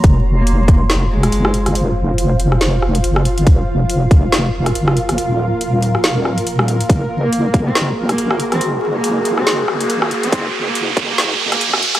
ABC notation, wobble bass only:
X:1
M:4/4
L:1/8
Q:"Swing 16ths" 1/4=140
K:Fphr
V:1 name="Wobble bass" clef=bass
F,,,6 G,,,2 | F,,,6 G,,,2 | F,,,6 G,,,2 | E,,,6 E,,,2 |
G,,,6 A,,,2 | G,,,6 A,,,2 | G,,,6 A,,,2 |]